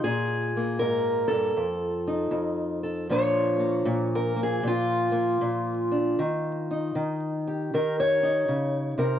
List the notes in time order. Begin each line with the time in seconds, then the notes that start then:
0.04 A#2 G#4
0.57 A#3
0.79 G#2 A#4
1.28 G2 A4
1.57 F2
2.07 D#4
2.31 F2
2.83 A4
3.09 A#2 F3 A#3 D4 C#5
3.60 A#3
3.85 A#2
4.15 A#4
4.36 A#3
4.43 G#4
4.63 A#2
4.67 F4
5.12 A#3
5.41 A#2
5.91 D4
6.19 D#3
6.71 D#4
6.95 D#3
7.47 G4
7.74 D#3 A#4
8.00 C#5
8.23 D#4
8.48 C#3
8.98 C3 A#4